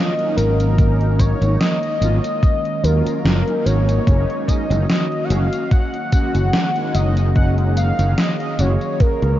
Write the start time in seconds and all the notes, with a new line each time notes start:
Already playing: D#3 F#3 G#3 A#3 C#4 F4 A#4 D#5
0.18 F#3 A#3 C#4 D#4, closed hi-hat
0.37 G#1 A#4, closed hi-hat, tambourine
0.60 closed hi-hat, tambourine
0.78 F#3 A#3 C#4 D#4, kick, closed hi-hat, tambourine
1.01 closed hi-hat
1.19 C#5, kick, closed hi-hat, tambourine
1.41 G#1 F#3 A#3 C#4 D#4, closed hi-hat, tambourine
1.60 D#5, snare, closed hi-hat, tambourine
1.83 closed hi-hat
2.01 G#1 F#3 A#3 C#4 F4, closed hi-hat, tambourine
2.24 closed hi-hat, tambourine
2.43 kick, closed hi-hat, tambourine
2.65 closed hi-hat
2.83 D#2 F#3 A#3 C#4 F4 A#4, closed hi-hat, tambourine
3.06 muted fretless electric bass stroke, closed hi-hat, tambourine
3.25 F#1, snare, closed hi-hat, tambourine
3.46 F#3 A#3 C#4 D#4, closed hi-hat
3.65 G#1 C#5, closed hi-hat, tambourine
3.89 closed hi-hat, tambourine
4.06 F#1 F#3 G#3 A#3 C#4 D#4 F#4, kick, closed hi-hat, tambourine
4.30 closed hi-hat
4.47 D#5, kick, closed hi-hat, tambourine
4.70 F#1 G#3 A#3 C#4 D#4, closed hi-hat, tambourine
4.89 D#5, snare, closed hi-hat, tambourine
5.12 closed hi-hat
5.24 F#5
5.29 F#1 G#3 A#3 C#4 F#4 F5, closed hi-hat, tambourine
5.53 closed hi-hat, tambourine
5.71 F#5, kick, closed hi-hat, tambourine
5.94 closed hi-hat
6.11 G#3 A#3 C#4 F#4, kick, closed hi-hat, tambourine
6.35 F#1, closed hi-hat, tambourine
6.53 snare, closed hi-hat, tambourine
6.75 G#3 A#3 C#4 D#4, closed hi-hat
6.94 F#1 D#5, closed hi-hat, tambourine
7.17 closed hi-hat, tambourine
7.35 G#3 A#3 C#4 D#4 G#4 F#5, kick, closed hi-hat, tambourine
7.58 closed hi-hat
7.77 F5, closed hi-hat, tambourine
7.98 F#1 G#3 A#3 C#4 D#4, closed hi-hat, tambourine
8.18 D#5, snare, closed hi-hat, tambourine
8.40 closed hi-hat
8.58 F#1 G#3 A#3 C#4 F#4 C#5, closed hi-hat, tambourine
8.81 closed hi-hat, tambourine
9.00 A#4, kick, closed hi-hat, tambourine
9.22 C#2, closed hi-hat